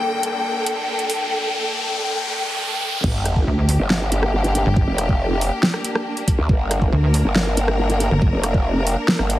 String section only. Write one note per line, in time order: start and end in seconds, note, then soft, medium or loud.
0.00 3.00 G2 medium
0.00 3.00 D3 medium
0.00 3.00 A#3 medium
0.00 3.00 A4 medium
0.00 3.02 G5 medium
3.04 9.39 A#3 medium
3.04 9.39 D4 medium
3.04 6.48 G4 medium
6.49 9.39 A#4 medium